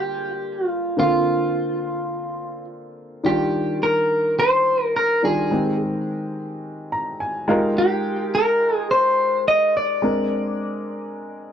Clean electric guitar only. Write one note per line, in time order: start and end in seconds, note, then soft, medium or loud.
0.00 0.67 G4 medium
0.67 0.99 F4 medium
1.00 2.65 F4 medium
3.26 3.78 G4 medium
3.83 4.35 A#4 medium
4.40 4.85 C5 loud
4.85 4.96 A#4 loud
4.96 5.22 A#4 loud
5.25 5.76 G#4 medium
7.78 8.36 G4 medium
8.35 8.76 A#4 medium
8.76 8.87 G#4 medium
8.91 9.43 C5 loud
9.48 9.76 D#5 loud
9.77 11.52 D5 medium